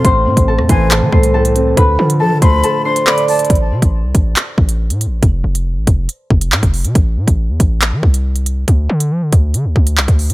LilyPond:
<<
  \new Staff \with { instrumentName = "Flute" } { \time 4/4 \key a \minor \tempo 4 = 139 r4. gis''8 r2 | r4 a''8 b''4 c'''8 b''8 a''8 | r1 | r1 |
r1 | r1 | }
  \new Staff \with { instrumentName = "Harp" } { \time 4/4 \key a \minor <c'' c'''>4 <a' a''>8 <c'' c'''>8 <a' a''>8 <c'' c'''>8 <a' a''>4 | <b' b''>4 <a' a''>8 <c'' c'''>8 <a' a''>8 <c'' c'''>8 <d'' d'''>4 | r1 | r1 |
r1 | r1 | }
  \new Staff \with { instrumentName = "Grand piano" } { \clef bass \time 4/4 \key a \minor a,8 c4 e8 a,8 a8 a,8 c'8 | d8 f4 a8 d8 d'8 d8 d''8 | r1 | r1 |
r1 | r1 | }
  \new Staff \with { instrumentName = "808-style bass" } { \clef bass \time 4/4 \key a \minor a,,8 a,16 a,,8 e,16 a,,8. e16 c,4. | d,8 d8 f16 d16 d,8 r2 | a,,8 c16 a,,8 c,16 a,,8 r8 a,,8. a,16. a,,16. | f,,8 f,,8. a,,16 f,,8 r8 f,,8 a,16 f,,8 c16 |
a,,8 a,16 a,,8 e,16 a,,8. e16 c,4. | d,8 d8 f16 d16 d,8 d16 d,16 d,8 c,16 d,8 d16 | }
  \new DrumStaff \with { instrumentName = "Drums" } \drummode { \time 4/4 <hh bd>8. <hh bd>16 r16 ss16 <hh bd>8 <hc hh>8 bd16 hh16 r16 hh16 hh8 | <hh bd>8. hh16 r8 <hh bd>8 hh8. hh16 <hc ss>16 hh16 hho16 hh32 hh32 | <hh bd>32 hh8 r32 <hh bd>16 r8 <hh bd>8 <hc hh>8 bd16 hh16 r16 hh16 hh8 | <hh bd>8. hh16 r8 <hh bd>8 hh8 bd16 hh16 hc16 <hh bd>16 hho16 hh16 |
<hh bd>8. <hh bd>16 r8 <hh bd>8 <hc hh>8 bd16 hh16 r16 hh16 hh8 | <hh bd>8. hh16 r8 <hh bd>8 hh8 bd16 hh16 hc16 <hh bd>16 hho16 hh16 | }
>>